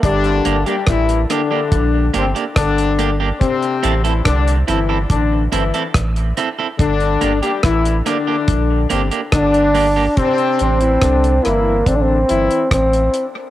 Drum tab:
HH |xxxxxxx-x-xxxxx-|xxxxxxx-x-xxxxx-|xxxxxxx-x-xxxxo-|xxxxxxx-x-xxxxx-|
SD |----r-r-----r---|----r-------r---|----r-r-----r---|----r-r-----r---|
BD |o---o---o---o---|o---o---o---o---|o---o---o---o---|o---o---o---o---|